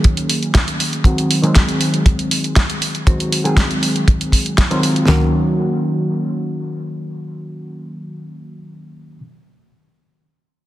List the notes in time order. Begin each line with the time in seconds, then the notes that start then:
Already playing: D#3 F#3 A#3 C#4 G#4
0.04 kick, closed hi-hat
0.17 closed hi-hat
0.29 open hi-hat
0.43 closed hi-hat
0.55 kick, snare, closed hi-hat
0.68 closed hi-hat
0.80 open hi-hat
0.93 closed hi-hat
1.04 D#3 F#3 G#3 C4 F#4, kick, closed hi-hat
1.18 closed hi-hat
1.31 open hi-hat
1.42 D#3 F#3 G#3 C4 G#4, closed hi-hat
1.55 kick, snare, closed hi-hat
1.69 closed hi-hat
1.81 open hi-hat
1.94 closed hi-hat
2.06 kick, closed hi-hat
2.19 closed hi-hat
2.31 open hi-hat
2.44 closed hi-hat
2.56 kick, snare, closed hi-hat
2.70 closed hi-hat
2.82 open hi-hat
2.95 closed hi-hat
3.06 D#3 F#3 G#3 C4 F#4, kick, closed hi-hat
3.20 closed hi-hat
3.32 open hi-hat
3.44 D#3 F#3 G#3 C4 G#4, closed hi-hat
3.57 kick, snare, closed hi-hat
3.71 closed hi-hat
3.83 open hi-hat
3.96 closed hi-hat
4.08 kick, closed hi-hat
4.21 closed hi-hat
4.32 kick, open hi-hat
4.46 closed hi-hat
4.58 kick, snare, closed hi-hat
4.70 D#3 F#3 G#3 C4 F4, closed hi-hat
4.83 open hi-hat
4.96 closed hi-hat
5.07 D#3 F#3 A#3 C#4 F#4, snare, floor tom